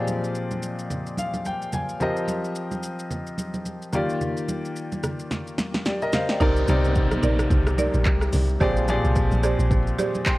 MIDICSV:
0, 0, Header, 1, 6, 480
1, 0, Start_track
1, 0, Key_signature, -3, "minor"
1, 0, Tempo, 550459
1, 1747, Time_signature, 4, 2, 24, 8
1, 9054, End_track
2, 0, Start_track
2, 0, Title_t, "Marimba"
2, 0, Program_c, 0, 12
2, 5584, Note_on_c, 0, 63, 93
2, 5587, Note_on_c, 0, 70, 83
2, 5589, Note_on_c, 0, 74, 100
2, 6034, Note_off_c, 0, 63, 0
2, 6035, Note_off_c, 0, 70, 0
2, 6036, Note_off_c, 0, 74, 0
2, 6304, Note_on_c, 0, 63, 75
2, 6307, Note_on_c, 0, 70, 68
2, 6309, Note_on_c, 0, 74, 83
2, 6406, Note_off_c, 0, 63, 0
2, 6408, Note_off_c, 0, 70, 0
2, 6409, Note_off_c, 0, 74, 0
2, 6786, Note_on_c, 0, 63, 74
2, 6788, Note_on_c, 0, 70, 68
2, 6791, Note_on_c, 0, 74, 83
2, 6887, Note_off_c, 0, 63, 0
2, 6888, Note_off_c, 0, 70, 0
2, 6890, Note_off_c, 0, 74, 0
2, 7504, Note_on_c, 0, 67, 94
2, 7505, Note_on_c, 0, 68, 88
2, 7507, Note_on_c, 0, 72, 86
2, 7509, Note_on_c, 0, 74, 101
2, 7953, Note_off_c, 0, 67, 0
2, 7954, Note_off_c, 0, 68, 0
2, 7955, Note_off_c, 0, 72, 0
2, 7956, Note_off_c, 0, 74, 0
2, 8225, Note_on_c, 0, 67, 75
2, 8228, Note_on_c, 0, 68, 70
2, 8229, Note_on_c, 0, 72, 70
2, 8231, Note_on_c, 0, 74, 80
2, 8327, Note_off_c, 0, 67, 0
2, 8329, Note_off_c, 0, 68, 0
2, 8329, Note_off_c, 0, 72, 0
2, 8330, Note_off_c, 0, 74, 0
2, 8706, Note_on_c, 0, 67, 75
2, 8707, Note_on_c, 0, 68, 68
2, 8709, Note_on_c, 0, 72, 65
2, 8710, Note_on_c, 0, 74, 85
2, 8807, Note_off_c, 0, 67, 0
2, 8808, Note_off_c, 0, 68, 0
2, 8809, Note_off_c, 0, 72, 0
2, 8810, Note_off_c, 0, 74, 0
2, 9054, End_track
3, 0, Start_track
3, 0, Title_t, "Grand piano"
3, 0, Program_c, 1, 0
3, 0, Control_c, 1, 64, 127
3, 0, Note_on_c, 1, 46, 69
3, 0, Note_on_c, 1, 53, 66
3, 0, Note_on_c, 1, 60, 65
3, 0, Note_on_c, 1, 67, 67
3, 0, Note_on_c, 1, 68, 66
3, 0, Note_on_c, 1, 74, 78
3, 1036, Note_on_c, 1, 77, 65
3, 1255, Note_off_c, 1, 77, 0
3, 1275, Note_on_c, 1, 79, 70
3, 1495, Note_off_c, 1, 79, 0
3, 1514, Note_on_c, 1, 80, 67
3, 1711, Note_off_c, 1, 46, 0
3, 1713, Note_off_c, 1, 53, 0
3, 1716, Note_off_c, 1, 60, 0
3, 1718, Note_off_c, 1, 67, 0
3, 1721, Note_off_c, 1, 68, 0
3, 1723, Note_off_c, 1, 74, 0
3, 1734, Note_off_c, 1, 80, 0
3, 1743, Note_on_c, 1, 53, 71
3, 1747, Note_on_c, 1, 60, 66
3, 1754, Note_on_c, 1, 67, 67
3, 1760, Note_on_c, 1, 70, 67
3, 1761, Control_c, 1, 64, 0
3, 1766, Note_on_c, 1, 75, 78
3, 1938, Control_c, 1, 64, 127
3, 3391, Note_off_c, 1, 53, 0
3, 3394, Note_off_c, 1, 60, 0
3, 3397, Note_off_c, 1, 67, 0
3, 3400, Note_off_c, 1, 70, 0
3, 3403, Note_off_c, 1, 75, 0
3, 3422, Note_on_c, 1, 51, 68
3, 3427, Note_on_c, 1, 58, 66
3, 3434, Note_on_c, 1, 65, 66
3, 3438, Control_c, 1, 64, 0
3, 3439, Note_on_c, 1, 67, 65
3, 3445, Note_on_c, 1, 74, 77
3, 3587, Control_c, 1, 64, 127
3, 5080, Note_off_c, 1, 67, 0
3, 5083, Note_off_c, 1, 74, 0
3, 5115, Note_on_c, 1, 74, 61
3, 5121, Note_on_c, 1, 67, 51
3, 5244, Note_off_c, 1, 74, 0
3, 5247, Note_off_c, 1, 67, 0
3, 5254, Note_on_c, 1, 75, 72
3, 5260, Note_on_c, 1, 70, 61
3, 5310, Note_off_c, 1, 51, 0
3, 5313, Note_off_c, 1, 58, 0
3, 5316, Note_off_c, 1, 65, 0
3, 5346, Note_off_c, 1, 75, 0
3, 5350, Note_off_c, 1, 70, 0
3, 5356, Note_on_c, 1, 77, 67
3, 5361, Note_on_c, 1, 72, 57
3, 5484, Note_off_c, 1, 77, 0
3, 5487, Note_off_c, 1, 72, 0
3, 5496, Note_on_c, 1, 79, 60
3, 5501, Note_on_c, 1, 74, 54
3, 5588, Note_off_c, 1, 74, 0
3, 5588, Note_on_c, 1, 48, 84
3, 5592, Note_on_c, 1, 60, 74
3, 5595, Note_on_c, 1, 63, 78
3, 5597, Note_on_c, 1, 70, 73
3, 5598, Control_c, 1, 64, 0
3, 5601, Note_on_c, 1, 74, 93
3, 5720, Note_off_c, 1, 79, 0
3, 5730, Control_c, 1, 64, 127
3, 5787, Note_off_c, 1, 48, 0
3, 5789, Note_off_c, 1, 60, 0
3, 5791, Note_off_c, 1, 63, 0
3, 5792, Note_off_c, 1, 70, 0
3, 5794, Note_off_c, 1, 74, 0
3, 5827, Note_on_c, 1, 48, 85
3, 5831, Note_on_c, 1, 60, 80
3, 5833, Note_on_c, 1, 63, 78
3, 5836, Note_on_c, 1, 70, 74
3, 5839, Note_on_c, 1, 74, 89
3, 6603, Note_off_c, 1, 48, 0
3, 6605, Note_off_c, 1, 60, 0
3, 6606, Note_off_c, 1, 63, 0
3, 6607, Note_off_c, 1, 70, 0
3, 6609, Note_off_c, 1, 74, 0
3, 7509, Note_on_c, 1, 46, 86
3, 7512, Note_on_c, 1, 53, 75
3, 7514, Note_on_c, 1, 60, 81
3, 7517, Control_c, 1, 64, 0
3, 7517, Note_on_c, 1, 67, 76
3, 7518, Note_on_c, 1, 68, 78
3, 7520, Note_on_c, 1, 74, 96
3, 7688, Control_c, 1, 64, 127
3, 7708, Note_off_c, 1, 46, 0
3, 7709, Note_off_c, 1, 53, 0
3, 7710, Note_off_c, 1, 60, 0
3, 7712, Note_off_c, 1, 67, 0
3, 7712, Note_off_c, 1, 68, 0
3, 7714, Note_off_c, 1, 74, 0
3, 7747, Note_on_c, 1, 46, 89
3, 7749, Note_on_c, 1, 53, 76
3, 7752, Note_on_c, 1, 60, 79
3, 7755, Note_on_c, 1, 67, 75
3, 7757, Note_on_c, 1, 68, 81
3, 7759, Note_on_c, 1, 74, 92
3, 8523, Note_off_c, 1, 46, 0
3, 8524, Note_off_c, 1, 53, 0
3, 8525, Note_off_c, 1, 60, 0
3, 8527, Note_off_c, 1, 67, 0
3, 8528, Note_off_c, 1, 68, 0
3, 8529, Note_off_c, 1, 74, 0
3, 8956, Note_on_c, 1, 84, 63
3, 8961, Note_on_c, 1, 79, 54
3, 9054, Note_off_c, 1, 79, 0
3, 9054, Note_off_c, 1, 84, 0
3, 9054, End_track
4, 0, Start_track
4, 0, Title_t, "Log drum bass"
4, 0, Program_c, 2, 39
4, 5588, Note_on_c, 2, 36, 100
4, 5798, Note_off_c, 2, 36, 0
4, 5829, Note_on_c, 2, 36, 99
4, 6249, Note_off_c, 2, 36, 0
4, 6306, Note_on_c, 2, 34, 92
4, 6517, Note_off_c, 2, 34, 0
4, 6545, Note_on_c, 2, 36, 92
4, 6878, Note_off_c, 2, 36, 0
4, 6926, Note_on_c, 2, 34, 96
4, 7014, Note_off_c, 2, 34, 0
4, 7026, Note_on_c, 2, 36, 91
4, 7237, Note_off_c, 2, 36, 0
4, 7265, Note_on_c, 2, 36, 94
4, 7477, Note_off_c, 2, 36, 0
4, 7507, Note_on_c, 2, 34, 102
4, 7840, Note_off_c, 2, 34, 0
4, 7886, Note_on_c, 2, 36, 100
4, 8096, Note_off_c, 2, 36, 0
4, 8123, Note_on_c, 2, 34, 89
4, 8335, Note_off_c, 2, 34, 0
4, 8363, Note_on_c, 2, 34, 101
4, 8663, Note_off_c, 2, 34, 0
4, 9054, End_track
5, 0, Start_track
5, 0, Title_t, "Downlifter"
5, 0, Program_c, 3, 103
5, 5588, Note_on_c, 3, 60, 90
5, 9054, Note_off_c, 3, 60, 0
5, 9054, End_track
6, 0, Start_track
6, 0, Title_t, "Drums"
6, 66, Note_on_c, 9, 63, 68
6, 68, Note_on_c, 9, 82, 90
6, 153, Note_off_c, 9, 63, 0
6, 155, Note_off_c, 9, 82, 0
6, 210, Note_on_c, 9, 82, 50
6, 298, Note_off_c, 9, 82, 0
6, 305, Note_on_c, 9, 82, 72
6, 392, Note_off_c, 9, 82, 0
6, 444, Note_on_c, 9, 82, 53
6, 447, Note_on_c, 9, 63, 62
6, 531, Note_off_c, 9, 82, 0
6, 534, Note_off_c, 9, 63, 0
6, 546, Note_on_c, 9, 82, 87
6, 633, Note_off_c, 9, 82, 0
6, 689, Note_on_c, 9, 82, 55
6, 776, Note_off_c, 9, 82, 0
6, 788, Note_on_c, 9, 64, 66
6, 790, Note_on_c, 9, 82, 67
6, 875, Note_off_c, 9, 64, 0
6, 877, Note_off_c, 9, 82, 0
6, 930, Note_on_c, 9, 82, 47
6, 1017, Note_off_c, 9, 82, 0
6, 1023, Note_on_c, 9, 63, 70
6, 1030, Note_on_c, 9, 82, 94
6, 1111, Note_off_c, 9, 63, 0
6, 1117, Note_off_c, 9, 82, 0
6, 1165, Note_on_c, 9, 63, 69
6, 1166, Note_on_c, 9, 82, 49
6, 1252, Note_off_c, 9, 63, 0
6, 1253, Note_off_c, 9, 82, 0
6, 1266, Note_on_c, 9, 82, 70
6, 1268, Note_on_c, 9, 63, 50
6, 1354, Note_off_c, 9, 82, 0
6, 1355, Note_off_c, 9, 63, 0
6, 1412, Note_on_c, 9, 82, 48
6, 1499, Note_off_c, 9, 82, 0
6, 1504, Note_on_c, 9, 82, 88
6, 1507, Note_on_c, 9, 63, 72
6, 1507, Note_on_c, 9, 64, 71
6, 1592, Note_off_c, 9, 82, 0
6, 1594, Note_off_c, 9, 63, 0
6, 1594, Note_off_c, 9, 64, 0
6, 1647, Note_on_c, 9, 82, 50
6, 1735, Note_off_c, 9, 82, 0
6, 1745, Note_on_c, 9, 64, 68
6, 1747, Note_on_c, 9, 82, 58
6, 1832, Note_off_c, 9, 64, 0
6, 1835, Note_off_c, 9, 82, 0
6, 1888, Note_on_c, 9, 82, 55
6, 1975, Note_off_c, 9, 82, 0
6, 1984, Note_on_c, 9, 63, 71
6, 1988, Note_on_c, 9, 82, 91
6, 2071, Note_off_c, 9, 63, 0
6, 2075, Note_off_c, 9, 82, 0
6, 2131, Note_on_c, 9, 82, 46
6, 2218, Note_off_c, 9, 82, 0
6, 2226, Note_on_c, 9, 82, 72
6, 2313, Note_off_c, 9, 82, 0
6, 2366, Note_on_c, 9, 63, 66
6, 2367, Note_on_c, 9, 82, 55
6, 2453, Note_off_c, 9, 63, 0
6, 2454, Note_off_c, 9, 82, 0
6, 2467, Note_on_c, 9, 82, 86
6, 2554, Note_off_c, 9, 82, 0
6, 2609, Note_on_c, 9, 82, 56
6, 2696, Note_off_c, 9, 82, 0
6, 2707, Note_on_c, 9, 64, 68
6, 2710, Note_on_c, 9, 82, 64
6, 2795, Note_off_c, 9, 64, 0
6, 2797, Note_off_c, 9, 82, 0
6, 2849, Note_on_c, 9, 82, 47
6, 2936, Note_off_c, 9, 82, 0
6, 2944, Note_on_c, 9, 63, 70
6, 2951, Note_on_c, 9, 82, 97
6, 3032, Note_off_c, 9, 63, 0
6, 3038, Note_off_c, 9, 82, 0
6, 3085, Note_on_c, 9, 63, 69
6, 3086, Note_on_c, 9, 82, 53
6, 3173, Note_off_c, 9, 63, 0
6, 3173, Note_off_c, 9, 82, 0
6, 3187, Note_on_c, 9, 82, 71
6, 3189, Note_on_c, 9, 63, 51
6, 3274, Note_off_c, 9, 82, 0
6, 3277, Note_off_c, 9, 63, 0
6, 3332, Note_on_c, 9, 82, 48
6, 3419, Note_off_c, 9, 82, 0
6, 3425, Note_on_c, 9, 82, 88
6, 3427, Note_on_c, 9, 63, 72
6, 3427, Note_on_c, 9, 64, 69
6, 3513, Note_off_c, 9, 82, 0
6, 3514, Note_off_c, 9, 63, 0
6, 3514, Note_off_c, 9, 64, 0
6, 3570, Note_on_c, 9, 82, 49
6, 3657, Note_off_c, 9, 82, 0
6, 3668, Note_on_c, 9, 64, 66
6, 3670, Note_on_c, 9, 82, 59
6, 3755, Note_off_c, 9, 64, 0
6, 3757, Note_off_c, 9, 82, 0
6, 3809, Note_on_c, 9, 82, 58
6, 3896, Note_off_c, 9, 82, 0
6, 3908, Note_on_c, 9, 63, 70
6, 3910, Note_on_c, 9, 82, 94
6, 3995, Note_off_c, 9, 63, 0
6, 3997, Note_off_c, 9, 82, 0
6, 4053, Note_on_c, 9, 82, 46
6, 4140, Note_off_c, 9, 82, 0
6, 4149, Note_on_c, 9, 82, 75
6, 4237, Note_off_c, 9, 82, 0
6, 4289, Note_on_c, 9, 82, 53
6, 4291, Note_on_c, 9, 63, 65
6, 4376, Note_off_c, 9, 82, 0
6, 4378, Note_off_c, 9, 63, 0
6, 4389, Note_on_c, 9, 64, 65
6, 4389, Note_on_c, 9, 82, 88
6, 4391, Note_on_c, 9, 37, 79
6, 4476, Note_off_c, 9, 64, 0
6, 4476, Note_off_c, 9, 82, 0
6, 4478, Note_off_c, 9, 37, 0
6, 4529, Note_on_c, 9, 82, 56
6, 4617, Note_off_c, 9, 82, 0
6, 4630, Note_on_c, 9, 38, 48
6, 4631, Note_on_c, 9, 64, 66
6, 4632, Note_on_c, 9, 82, 66
6, 4717, Note_off_c, 9, 38, 0
6, 4719, Note_off_c, 9, 64, 0
6, 4719, Note_off_c, 9, 82, 0
6, 4772, Note_on_c, 9, 82, 48
6, 4859, Note_off_c, 9, 82, 0
6, 4867, Note_on_c, 9, 38, 61
6, 4867, Note_on_c, 9, 63, 68
6, 4870, Note_on_c, 9, 82, 103
6, 4954, Note_off_c, 9, 38, 0
6, 4954, Note_off_c, 9, 63, 0
6, 4957, Note_off_c, 9, 82, 0
6, 5008, Note_on_c, 9, 38, 64
6, 5008, Note_on_c, 9, 63, 67
6, 5008, Note_on_c, 9, 82, 50
6, 5095, Note_off_c, 9, 63, 0
6, 5095, Note_off_c, 9, 82, 0
6, 5096, Note_off_c, 9, 38, 0
6, 5106, Note_on_c, 9, 82, 70
6, 5109, Note_on_c, 9, 38, 77
6, 5113, Note_on_c, 9, 63, 51
6, 5194, Note_off_c, 9, 82, 0
6, 5196, Note_off_c, 9, 38, 0
6, 5200, Note_off_c, 9, 63, 0
6, 5250, Note_on_c, 9, 82, 50
6, 5337, Note_off_c, 9, 82, 0
6, 5344, Note_on_c, 9, 82, 88
6, 5349, Note_on_c, 9, 38, 90
6, 5351, Note_on_c, 9, 63, 70
6, 5351, Note_on_c, 9, 64, 69
6, 5432, Note_off_c, 9, 82, 0
6, 5436, Note_off_c, 9, 38, 0
6, 5438, Note_off_c, 9, 63, 0
6, 5438, Note_off_c, 9, 64, 0
6, 5488, Note_on_c, 9, 38, 85
6, 5488, Note_on_c, 9, 82, 51
6, 5575, Note_off_c, 9, 38, 0
6, 5575, Note_off_c, 9, 82, 0
6, 5586, Note_on_c, 9, 82, 61
6, 5588, Note_on_c, 9, 36, 108
6, 5592, Note_on_c, 9, 64, 70
6, 5673, Note_off_c, 9, 82, 0
6, 5675, Note_off_c, 9, 36, 0
6, 5680, Note_off_c, 9, 64, 0
6, 5726, Note_on_c, 9, 82, 63
6, 5813, Note_off_c, 9, 82, 0
6, 5824, Note_on_c, 9, 82, 98
6, 5832, Note_on_c, 9, 63, 73
6, 5911, Note_off_c, 9, 82, 0
6, 5919, Note_off_c, 9, 63, 0
6, 5969, Note_on_c, 9, 82, 52
6, 6056, Note_off_c, 9, 82, 0
6, 6064, Note_on_c, 9, 82, 76
6, 6068, Note_on_c, 9, 36, 98
6, 6151, Note_off_c, 9, 82, 0
6, 6155, Note_off_c, 9, 36, 0
6, 6204, Note_on_c, 9, 37, 94
6, 6205, Note_on_c, 9, 82, 58
6, 6211, Note_on_c, 9, 63, 68
6, 6291, Note_off_c, 9, 37, 0
6, 6292, Note_off_c, 9, 82, 0
6, 6298, Note_off_c, 9, 63, 0
6, 6305, Note_on_c, 9, 82, 95
6, 6392, Note_off_c, 9, 82, 0
6, 6446, Note_on_c, 9, 37, 96
6, 6446, Note_on_c, 9, 82, 58
6, 6533, Note_off_c, 9, 37, 0
6, 6533, Note_off_c, 9, 82, 0
6, 6545, Note_on_c, 9, 36, 103
6, 6548, Note_on_c, 9, 82, 67
6, 6551, Note_on_c, 9, 64, 73
6, 6632, Note_off_c, 9, 36, 0
6, 6635, Note_off_c, 9, 82, 0
6, 6638, Note_off_c, 9, 64, 0
6, 6687, Note_on_c, 9, 37, 92
6, 6688, Note_on_c, 9, 82, 50
6, 6774, Note_off_c, 9, 37, 0
6, 6776, Note_off_c, 9, 82, 0
6, 6785, Note_on_c, 9, 63, 75
6, 6788, Note_on_c, 9, 82, 103
6, 6872, Note_off_c, 9, 63, 0
6, 6876, Note_off_c, 9, 82, 0
6, 6924, Note_on_c, 9, 82, 53
6, 6927, Note_on_c, 9, 63, 68
6, 7011, Note_off_c, 9, 82, 0
6, 7014, Note_off_c, 9, 63, 0
6, 7024, Note_on_c, 9, 39, 104
6, 7024, Note_on_c, 9, 82, 73
6, 7027, Note_on_c, 9, 36, 94
6, 7032, Note_on_c, 9, 63, 51
6, 7111, Note_off_c, 9, 39, 0
6, 7112, Note_off_c, 9, 82, 0
6, 7114, Note_off_c, 9, 36, 0
6, 7119, Note_off_c, 9, 63, 0
6, 7162, Note_on_c, 9, 37, 88
6, 7169, Note_on_c, 9, 82, 48
6, 7249, Note_off_c, 9, 37, 0
6, 7256, Note_off_c, 9, 82, 0
6, 7262, Note_on_c, 9, 46, 74
6, 7262, Note_on_c, 9, 82, 92
6, 7271, Note_on_c, 9, 63, 73
6, 7271, Note_on_c, 9, 64, 74
6, 7350, Note_off_c, 9, 46, 0
6, 7350, Note_off_c, 9, 82, 0
6, 7358, Note_off_c, 9, 63, 0
6, 7358, Note_off_c, 9, 64, 0
6, 7406, Note_on_c, 9, 82, 54
6, 7493, Note_off_c, 9, 82, 0
6, 7506, Note_on_c, 9, 82, 64
6, 7507, Note_on_c, 9, 36, 115
6, 7510, Note_on_c, 9, 64, 70
6, 7593, Note_off_c, 9, 82, 0
6, 7594, Note_off_c, 9, 36, 0
6, 7597, Note_off_c, 9, 64, 0
6, 7645, Note_on_c, 9, 82, 61
6, 7732, Note_off_c, 9, 82, 0
6, 7745, Note_on_c, 9, 82, 96
6, 7749, Note_on_c, 9, 63, 72
6, 7832, Note_off_c, 9, 82, 0
6, 7836, Note_off_c, 9, 63, 0
6, 7888, Note_on_c, 9, 82, 49
6, 7975, Note_off_c, 9, 82, 0
6, 7984, Note_on_c, 9, 82, 76
6, 7987, Note_on_c, 9, 36, 98
6, 8071, Note_off_c, 9, 82, 0
6, 8074, Note_off_c, 9, 36, 0
6, 8123, Note_on_c, 9, 82, 56
6, 8131, Note_on_c, 9, 63, 66
6, 8210, Note_off_c, 9, 82, 0
6, 8218, Note_off_c, 9, 63, 0
6, 8225, Note_on_c, 9, 82, 93
6, 8227, Note_on_c, 9, 37, 88
6, 8312, Note_off_c, 9, 82, 0
6, 8314, Note_off_c, 9, 37, 0
6, 8368, Note_on_c, 9, 82, 60
6, 8455, Note_off_c, 9, 82, 0
6, 8465, Note_on_c, 9, 36, 103
6, 8468, Note_on_c, 9, 82, 66
6, 8471, Note_on_c, 9, 64, 73
6, 8552, Note_off_c, 9, 36, 0
6, 8556, Note_off_c, 9, 82, 0
6, 8558, Note_off_c, 9, 64, 0
6, 8607, Note_on_c, 9, 82, 48
6, 8694, Note_off_c, 9, 82, 0
6, 8706, Note_on_c, 9, 63, 69
6, 8708, Note_on_c, 9, 82, 103
6, 8793, Note_off_c, 9, 63, 0
6, 8795, Note_off_c, 9, 82, 0
6, 8846, Note_on_c, 9, 82, 53
6, 8848, Note_on_c, 9, 63, 70
6, 8933, Note_off_c, 9, 82, 0
6, 8936, Note_off_c, 9, 63, 0
6, 8943, Note_on_c, 9, 39, 100
6, 8944, Note_on_c, 9, 82, 70
6, 8947, Note_on_c, 9, 36, 97
6, 8953, Note_on_c, 9, 63, 51
6, 9031, Note_off_c, 9, 39, 0
6, 9031, Note_off_c, 9, 82, 0
6, 9034, Note_off_c, 9, 36, 0
6, 9040, Note_off_c, 9, 63, 0
6, 9054, End_track
0, 0, End_of_file